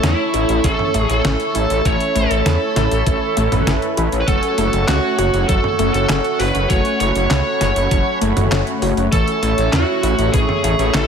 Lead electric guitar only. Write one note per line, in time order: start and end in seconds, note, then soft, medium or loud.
0.04 0.66 E4 medium
0.65 1.09 A4 medium
1.10 1.88 A4 loud
1.86 2.17 C#5 loud
2.16 3.94 A4 medium
4.20 4.28 B4 medium
4.27 4.87 A4 medium
4.88 5.45 F#4 medium
5.48 5.93 A4 loud
5.94 6.41 A4 loud
6.39 6.69 B4 loud
6.70 6.99 C#5 loud
7.00 8.18 C#5 loud
9.12 9.72 A4 loud
9.73 10.33 F#4 medium
10.33 10.94 G#4 loud
10.94 11.07 A4 loud